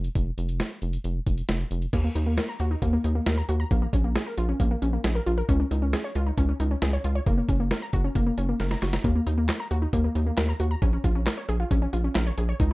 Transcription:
0.04 closed hi-hat
0.15 F1, kick, closed hi-hat
0.38 F1, closed hi-hat
0.49 closed hi-hat
0.60 snare, closed hi-hat
0.82 F1, closed hi-hat
0.93 closed hi-hat
1.04 F1, closed hi-hat
1.27 F1, kick, closed hi-hat
1.38 closed hi-hat
1.49 F1, snare, closed hi-hat
1.71 F1, closed hi-hat
1.82 closed hi-hat
1.93 D#2 A#3, kick, closed hi-hat, crash
2.04 A#3
2.15 D#2 D#4, closed hi-hat
2.26 A#3
2.38 A#4, snare, closed hi-hat
2.49 A#5
2.60 D#2 F#4, closed hi-hat
2.71 D#4
2.82 D#2 A#3, kick, closed hi-hat
2.93 A#3
3.04 D#2 D#4, closed hi-hat
3.15 A#3
3.26 D#2 A#4, snare, closed hi-hat
3.38 A#5
3.49 D#2 F#4, closed hi-hat
3.60 A#5
3.71 A#1 A#3, kick, closed hi-hat
3.82 A#3
3.93 A#1 C#4, kick, closed hi-hat
4.04 A#3
4.15 G#4, snare, closed hi-hat
4.26 A#4
4.38 A#1 F4, closed hi-hat
4.49 C#4
4.60 A#1 A#3, kick, closed hi-hat
4.71 A#3
4.82 A#1 C#4, closed hi-hat
4.93 A#3
5.04 A#1 G#4, snare, closed hi-hat
5.15 A#4
5.26 A#1 F4, closed hi-hat
5.38 A#4
5.49 C#2 C#4, kick, closed hi-hat
5.60 C#4
5.71 C#2 D#4, closed hi-hat
5.82 C#4
5.93 G#4, snare, closed hi-hat
6.04 C#5
6.15 C#2 F4, closed hi-hat
6.27 D#4
6.38 C#2 C#4, kick, closed hi-hat
6.49 C#4
6.60 C#2 D#4, closed hi-hat
6.71 C#4
6.82 C#2 G#4, snare, closed hi-hat
6.93 C#5
7.04 C#2 F4, closed hi-hat
7.15 C#5
7.26 F#1 A#3, kick, closed hi-hat
7.38 A#3
7.49 F#1 C#4, kick, closed hi-hat
7.60 A#3
7.71 A#4, snare, closed hi-hat
7.82 A#5
7.93 F#1 F#4, kick, closed hi-hat
8.04 C#4
8.15 F#1 A#3, kick, closed hi-hat
8.27 A#3
8.38 F#1 C#4, closed hi-hat
8.49 A#3
8.60 F#1 A#4, snare, closed hi-hat
8.71 A#5, snare
8.82 F#1 F#4, snare, open hi-hat
8.93 A#5, snare
9.04 D#2 A#3, kick, closed hi-hat
9.15 A#3
9.27 D#2 D#4, closed hi-hat
9.38 A#3
9.49 A#4, snare, clap, closed hi-hat
9.60 A#5
9.71 D#2 F#4, closed hi-hat
9.82 D#4
9.93 D#2 A#3, kick, closed hi-hat
10.04 A#3
10.15 D#2 D#4, closed hi-hat
10.26 A#3
10.37 D#2 A#4, snare, clap, closed hi-hat
10.49 A#5
10.60 D#2 F#4, closed hi-hat
10.71 A#5
10.82 A#1 C#4, kick, closed hi-hat
10.93 C#4
11.04 A#1 F4, kick, closed hi-hat
11.15 C#4
11.26 A#4, snare, clap, closed hi-hat
11.37 C#5
11.49 A#1 G#4, closed hi-hat
11.60 F4
11.71 A#1 C#4, kick, closed hi-hat
11.82 C#4
11.93 A#1 F4, closed hi-hat
12.04 C#4
12.15 A#1 A#4, snare, clap, closed hi-hat
12.26 C#5
12.38 A#1 G#4, closed hi-hat
12.49 C#5
12.60 C#2 D#4, kick, closed hi-hat

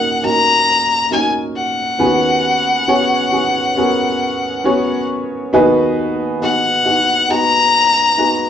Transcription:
Already playing: D#2 A#2 A#3 C#4 D#4 F#4 G#4 A#4 F#5
0.23 A#3 C#4 D#4 F#4 A#4 A#5
1.11 A#3 C#4 D#4 F#4 A#4 G#5
1.56 F#5
1.98 D#2 D#3 B3 C#4 F4 G#4 B4
2.06 F#4
2.87 B3 C#4 F#4 G#4 C#5
3.32 B3 C#4 F#4 G#4 B4
3.76 B3 C#4 F#4 G#4 A#4
4.64 B3 C#4 F#4 G#4 C#5
5.53 D#2 D#3 B3 D#4 F#4 G#4 B4
6.41 B3 D#4 F#4 G#4 B4 F#5
6.85 B3 D#4 F#4 G#4 B4
7.29 B3 D#4 F#4 G#4 B4 A#5
8.17 B3 D#4 F#4 G#4 B4

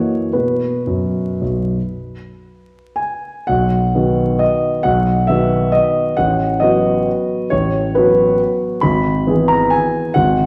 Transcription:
Already playing: E3 A#3 F#4 C#5
0.33 B2 B3 F#4 B4
0.87 F#2
1.41 B1
2.96 G#5
3.47 B1 F#5
3.95 D#3 B3 F#4
4.39 D#5
4.83 B1 F#5
5.27 D#3 B3 F#4 E5
5.72 D#5
6.17 A1 F#5
6.60 F#3 B3 F#4 D#5
7.50 A1 C#5
7.95 F#3 B3 F#4 B4
8.81 G#1 B5
9.27 E3 B3 G#4
9.48 A#5
9.70 G#5
10.14 G#1 F#5

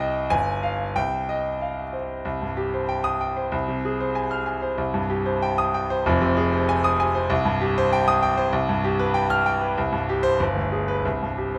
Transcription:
Already playing: C2 G5
0.00 D#5
0.30 G1 G#5
0.63 F5
0.96 C2 G5
1.29 D#5
1.61 F5
1.93 C5
2.25 C2
2.42 G2
2.57 G4
2.74 C5
2.89 G5
3.04 D#6
3.21 G5
3.37 C5
3.52 C2
3.68 C3
3.85 G#4
4.00 C5
4.15 G#5
4.31 F6
4.46 G#5
4.62 C5
4.78 C2
4.94 G2
5.10 G4
5.26 C5
5.42 G5
5.58 D#6
5.74 G5
5.90 C5
6.06 F1 F2
6.21 C3
6.37 G#4
6.53 C5
6.69 G#5
6.84 D#6
7.00 G#5
7.15 C5
7.30 C2
7.45 G2
7.61 G4
7.78 C5
7.93 G5
8.08 D#6
8.23 G5
8.37 C5
8.53 C2
8.69 G2
8.84 G4
8.99 B4
9.14 G5
9.30 F6
9.46 G5
9.61 B4
9.78 C2
9.92 G2
10.09 G4
10.23 C5
10.40 G1
10.56 D2
10.72 G#4
10.88 B4
11.05 C2
11.23 G2
11.38 G4
11.55 C5

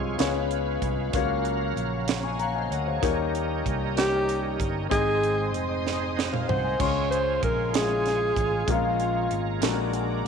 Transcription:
Already playing: C2 C3 F3 G#3 F4 G#4 C#5 F5 G#5 C6
0.18 C#2 G#3 B3 C#4 F4 G#4 A#4 C#5 B5, snare, closed hi-hat
0.25 B4
0.51 closed hi-hat
0.82 C2, kick, closed hi-hat
1.13 C#2 C#3 F#3 A#3 C#4 F4 F#4 A#4 C#5 F5 A#5, kick, closed hi-hat
1.45 closed hi-hat
1.76 A#1, closed hi-hat
2.08 snare, closed hi-hat
2.23 D#5 G#5 C#6
2.39 C#5 F5 F#5 A#5, closed hi-hat
2.55 C5 D#5 F5 G#5
2.71 D2 A#4 C#5 D#5 F#5, closed hi-hat
2.87 G#4 C5 C#5 F5
3.02 D#2 D#3 G3 A#3 C#4 D#4 G4 A#4 C#5 D#5 G5, kick, closed hi-hat
3.35 closed hi-hat
3.66 C2, kick, closed hi-hat
3.96 A#3 D#4 G4 C#5, snare, closed hi-hat
4.29 closed hi-hat
4.60 G1, kick, closed hi-hat
4.90 G#1 G#2 G#3 C4 D#4 G#4 C5 D#5 G#5 C6 D#6, kick, closed hi-hat
5.23 closed hi-hat
5.54 F1, closed hi-hat
5.87 snare
6.16 F#4 C5 D#5, snare
6.32 F4 A#4 C5 F5, mid tom
6.48 C2 F#4 C5 F#5, floor tom
6.65 A#4 D#5 G#5
6.79 C#2 C#3 G#3 C#4 F4 G#4 C#5 F5 G#5 C6, kick, crash
7.11 C5, closed hi-hat
7.43 A#1 A#4, kick, closed hi-hat
7.73 G#3 C#4 E4 G#4 D#5, snare, closed hi-hat
7.81 F4
8.06 snare, closed hi-hat
8.36 A1, kick, closed hi-hat
8.66 A#1 A#2 G#3 C4 C#4 F4 A#4 A#5, kick, closed hi-hat
8.71 C#4 F4
9.00 closed hi-hat
9.31 G#1, closed hi-hat
9.61 A#1 A#2 G#3 D4 F#4 A4 A#4 F#5 G#5 D6, snare, closed hi-hat
9.70 A#4
9.93 closed hi-hat

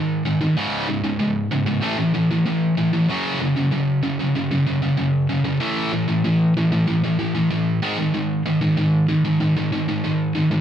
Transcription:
Already playing: G#2 D#3
0.25 G#2 D#3
0.41 G#2 D#3
0.57 C#2 G#2 C#3
0.89 C#2 G#2
1.04 C#2 G#2
1.19 C#2 G#2
1.52 C#2 G#2
1.67 C#2 G#2
1.82 A2 E3 A3
1.98 A2 E3
2.15 A2 E3
2.31 A2 E3
2.46 A2 E3
2.77 A2 E3
2.93 A2 E3
3.09 F#2 C#3 F#3
3.40 F#2 C#3
3.56 F#2 C#3
3.71 F#2 C#3
4.03 F#2 C#3
4.20 F#2 C#3
4.35 F#2 C#3
4.51 F#2 C#3
4.67 F#2 C#3
4.82 F#2 C#3
4.97 F#2 C#3
5.29 F#2 C#3
5.44 F#2 C#3
5.60 A2 E3 A3
5.93 A2 E3
6.08 A2 E3
6.24 A2 E3
6.57 A2 E3
6.72 A2 E3
6.87 A2 E3
7.03 A2 E3
7.19 A2 E3
7.35 A2 E3
7.50 A2 E3
7.83 G#2 D#3 G#3
7.99 G#2 D#3
8.14 G#2 D#3
8.46 G#2 D#3
8.61 G#2 D#3
8.77 G#2 D#3
9.08 G#2 D#3
9.25 G#2 D#3
9.40 G#2 D#3
9.57 G#2 D#3
9.72 G#2 D#3
9.88 G#2 D#3
10.04 G#2 D#3
10.35 G#2 D#3
10.51 G#2 D#3

